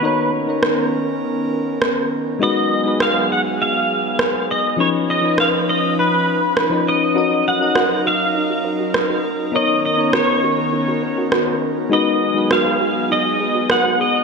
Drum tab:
SD |--r---r-|--r---r-|--r---r-|--r---r-|

SD |--r---r-|--r---r-|